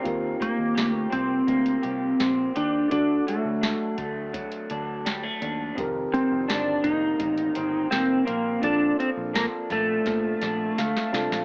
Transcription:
0.00 0.11 F3 medium
0.00 0.39 C4 medium
0.00 2.85 C4 medium
0.00 1.10 D#4 medium
0.00 2.86 F4 medium
0.00 0.75 A#4 medium
0.05 0.34 D#2 medium
0.05 2.87 G4 medium
0.05 2.88 A#4 medium
0.05 kick loud
0.05 closed hi-hat medium
0.40 1.46 A#3 medium
0.40 0.93 A#3 medium
0.40 kick medium
0.40 closed hi-hat medium
0.59 0.73 D#2 medium
0.75 1.06 D2 medium
0.75 1.82 G4 medium
0.75 snare loud
0.75 closed hi-hat medium
0.93 1.12 A3 medium
1.10 1.41 C2 medium
1.10 2.18 C4 medium
1.10 2.51 C4 medium
1.10 kick medium
1.10 closed hi-hat medium
1.47 1.77 D2 medium
1.47 2.98 A#3 medium
1.47 kick medium
1.47 closed hi-hat medium
1.66 closed hi-hat medium
1.83 2.13 C2 medium
1.83 2.54 G4 medium
1.83 closed hi-hat medium
2.20 2.48 A#1 medium
2.20 2.98 C4 medium
2.20 snare medium
2.20 closed hi-hat medium
2.55 2.85 D#2 medium
2.55 2.91 D4 medium
2.55 2.98 G4 medium
2.55 closed hi-hat medium
2.88 3.20 D2 loud
2.88 5.77 D3 medium
2.88 5.72 A3 medium
2.88 5.72 D4 medium
2.88 3.25 D4 loud
2.88 5.73 F#4 medium
2.88 kick loud
2.88 closed hi-hat medium
2.93 5.74 A4 medium
3.27 4.32 F#3 medium
3.27 3.95 A3 medium
3.27 closed hi-hat medium
3.45 3.74 D2 medium
3.61 4.69 D4 medium
3.61 snare loud
3.61 closed hi-hat medium
3.98 4.41 D2 medium
3.98 5.05 A3 medium
3.98 kick medium
3.98 closed hi-hat medium
4.33 5.84 F#3 medium
4.33 kick medium
4.33 closed hi-hat medium
4.52 closed hi-hat medium
4.70 5.28 D2 medium
4.70 5.41 D4 medium
4.70 closed hi-hat medium
5.05 5.23 G3 medium
5.05 snare loud
5.05 closed hi-hat medium
5.23 5.84 A3 soft
5.42 5.70 D#2 medium
5.42 5.84 D4 medium
5.42 closed hi-hat medium
5.75 6.06 F1 loud
5.75 8.63 F2 medium
5.75 8.59 D#3 medium
5.75 8.58 C4 medium
5.75 8.60 G4 medium
5.75 kick loud
5.75 closed hi-hat medium
5.80 8.61 A#4 medium
6.12 7.18 D#3 medium
6.12 6.50 C4 medium
6.12 kick medium
6.12 closed hi-hat medium
6.32 6.46 F1 medium
6.48 6.78 G1 medium
6.48 7.55 C4 medium
6.48 6.85 D4 loud
6.48 snare loud
6.48 closed hi-hat medium
6.84 7.13 F1 medium
6.84 7.91 A#3 medium
6.84 7.91 D#4 loud
6.84 kick medium
6.84 closed hi-hat medium
7.19 7.49 A1 medium
7.19 8.70 D#3 medium
7.19 kick medium
7.19 closed hi-hat medium
7.38 closed hi-hat medium
7.55 7.85 G1 medium
7.55 8.24 C4 medium
7.55 closed hi-hat medium
7.91 8.21 F1 medium
7.91 9.69 A#3 medium
7.91 8.26 C4 medium
7.91 snare loud
7.91 closed hi-hat medium
8.25 8.57 A#1 medium
8.25 8.64 A#3 medium
8.25 8.69 C4 medium
8.25 closed hi-hat medium
8.60 8.92 A#1 loud
8.60 11.45 A#2 medium
8.60 11.08 C4 medium
8.60 11.09 D4 medium
8.60 8.99 D4 medium
8.60 11.10 F4 medium
8.60 kick loud
8.60 closed hi-hat medium
8.65 11.10 A4 medium
8.99 10.04 F3 medium
8.99 9.09 C4 medium
8.99 closed hi-hat medium
9.17 9.46 A#1 medium
9.33 9.45 A#3 medium
9.33 10.41 D4 medium
9.33 snare loud
9.33 closed hi-hat loud
9.70 9.99 A#1 medium
9.70 10.76 A3 medium
9.70 11.10 A3 medium
9.70 kick medium
9.70 snare soft
9.70 closed hi-hat medium
10.05 10.35 A#2 medium
10.05 11.45 F3 medium
10.05 kick medium
10.05 snare medium
10.05 closed hi-hat medium
10.42 10.71 A#1 medium
10.42 11.12 D4 medium
10.42 snare medium
10.42 closed hi-hat medium
10.78 10.92 D2 medium
10.78 11.45 A3 medium
10.78 11.11 F5 medium
10.78 snare medium
10.78 closed hi-hat medium
10.97 snare medium
11.12 11.28 C2 medium
11.12 11.45 C4 medium
11.12 11.45 D4 soft
11.12 11.45 D4 medium
11.12 11.45 F4 medium
11.12 11.45 A4 medium
11.12 11.45 A5 medium
11.12 snare medium
11.12 closed hi-hat medium
11.31 11.45 A#1 medium
11.31 snare medium

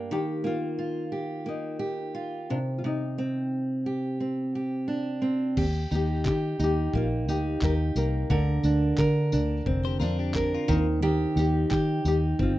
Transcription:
0.00 0.11 G2 medium
0.00 0.44 A#3 medium
0.00 0.18 D4 medium
0.00 0.82 G4 medium
0.11 3.61 D#3 medium
0.11 0.43 G4 loud
0.44 1.45 A#3 soft
0.44 1.44 F4 medium
0.79 2.13 F4 medium
1.12 1.79 G4 medium
1.46 2.56 A#3 soft
1.46 2.46 D#4 medium
1.79 3.86 G4 medium
2.15 2.56 F4 medium
2.50 2.83 C3 medium
2.50 2.57 D4 medium
2.78 2.84 F4 medium
2.84 5.57 C3 medium
2.84 4.86 D#4 medium
3.18 4.19 C4 medium
3.86 4.55 G4 soft
4.20 5.20 C4 soft
4.55 5.57 G4 medium
4.88 5.64 D4 medium
5.22 5.64 C4 medium
5.57 5.85 D#2 medium
5.57 6.25 G4 medium
5.57 kick loud
5.57 crash medium
5.91 6.27 D#2 loud
5.91 6.58 D#4 medium
5.91 tambourine medium
5.95 6.63 G4 medium
6.25 6.53 D#3 medium
6.25 7.62 G4 medium
6.25 kick loud
6.25 clap loud
6.59 6.87 D#2 medium
6.59 7.27 D#4 medium
6.59 tambourine medium
6.64 6.93 G4 medium
6.94 7.28 A#1 medium
6.94 7.96 A#3 medium
6.94 7.06 F4 medium
6.94 kick loud
7.28 7.56 D2 medium
7.28 8.38 D#4 medium
7.28 7.60 G4 medium
7.28 tambourine medium
7.62 7.90 D#2 medium
7.62 8.30 G4 medium
7.62 7.73 A#4 medium
7.62 kick loud
7.62 clap loud
7.96 8.23 C2 loud
7.96 9.66 A#3 medium
7.96 9.29 A#4 medium
7.96 tambourine medium
8.30 8.58 D2 loud
8.30 10.68 D3 medium
8.30 8.97 A#4 medium
8.30 kick loud
8.63 8.92 D2 loud
8.63 9.31 D4 medium
8.63 tambourine medium
8.98 9.34 D3 medium
8.98 10.34 A#4 medium
8.98 kick loud
8.98 clap loud
9.32 9.60 D2 medium
9.32 10.01 D4 medium
9.32 tambourine medium
9.66 10.01 F1 loud
9.66 12.39 C4 medium
9.66 kick loud
9.85 10.00 G4 medium
9.85 9.99 C5 medium
10.00 10.56 F2 loud
10.00 10.77 D4 medium
10.00 10.18 F4 medium
10.00 10.18 A#4 medium
10.00 tambourine medium
10.19 10.52 D4 medium
10.19 10.52 G4 medium
10.34 10.77 A#4 medium
10.34 kick loud
10.34 clap loud
10.54 10.86 C4 medium
10.54 10.86 F4 medium
10.68 11.25 D#2 loud
10.68 11.01 D#3 medium
10.68 kick loud
10.68 tambourine medium
11.02 12.59 D#3 medium
11.02 11.69 G4 medium
11.36 11.64 D#2 loud
11.36 12.04 D#4 medium
11.36 12.02 G4 loud
11.36 tambourine medium
11.71 11.99 D#3 medium
11.71 12.59 G4 medium
11.71 kick loud
11.71 clap loud
12.05 12.33 D#2 medium
12.05 12.59 D#4 medium
12.05 12.17 G4 medium
12.05 tambourine medium
12.39 12.59 G1 loud
12.39 12.59 C4 medium
12.39 12.51 F4 medium
12.39 kick loud

